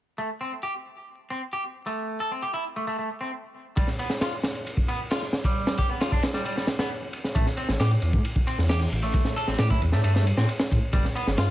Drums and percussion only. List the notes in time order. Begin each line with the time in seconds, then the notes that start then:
3.77 kick, ride
3.88 snare
3.99 ride
4.10 snare
4.21 snare, ride
4.32 ride
4.43 snare, ride
4.55 ride
4.67 ride
4.77 kick
4.89 ride
5.11 snare, open hi-hat
5.22 snare
5.33 snare
5.44 kick, ride
5.67 snare
5.77 kick, ride
6.01 snare, ride
6.12 kick
6.23 snare, ride
6.34 snare
6.45 ride
6.57 snare
6.67 snare, ride
6.79 snare, ride
7.13 ride
7.24 snare
7.35 kick, ride
7.47 snare
7.57 ride
7.68 snare
7.80 snare, ride
7.91 ride
8.02 ride
8.13 kick
8.25 ride
8.36 kick
8.48 ride
8.59 snare
8.70 snare, open hi-hat
8.81 snare
8.92 ride
9.02 ride
9.14 kick, ride
9.25 snare
9.37 ride
9.48 snare
9.58 snare, ride
9.70 kick
9.82 ride
9.92 snare
10.04 ride
10.16 snare
10.27 ride
10.37 snare
10.49 ride
10.59 snare
10.72 kick, ride
10.93 kick, ride
11.05 snare
11.16 ride
11.27 snare
11.38 snare, ride